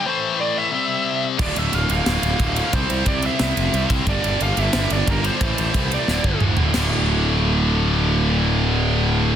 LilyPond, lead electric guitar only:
\new Staff \with { instrumentName = "Lead electric guitar" } { \time 4/4 \key d \minor \tempo 4 = 179 c''4 d''8 e''2 r8 | d''8 e''8 f''8 f''2~ f''8 | c''4 d''8 e''2 r8 | d''4 f''8 e''4 d''8 bes'8 c''8~ |
c''8 c''4 d''4. r4 | r1 | r1 | }